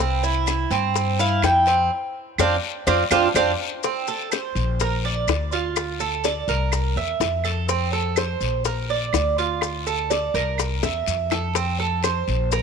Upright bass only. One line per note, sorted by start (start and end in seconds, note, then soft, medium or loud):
0.00 0.64 C2 loud
0.70 1.39 G2 loud
1.43 1.88 F2 medium
2.38 2.57 F2 loud
2.87 3.05 F2 loud
3.11 3.29 F2 loud
3.34 3.53 F2 loud
4.55 5.24 A#1 loud
5.27 6.42 D2 medium
6.48 6.93 C2 loud
6.96 7.19 E2 medium
7.20 8.35 F2 medium
8.41 9.09 A#1 loud
9.13 10.28 D2 medium
10.34 10.79 C2 loud
10.83 11.05 E2 medium
11.07 12.21 F2 medium
12.28 12.62 A#1 loud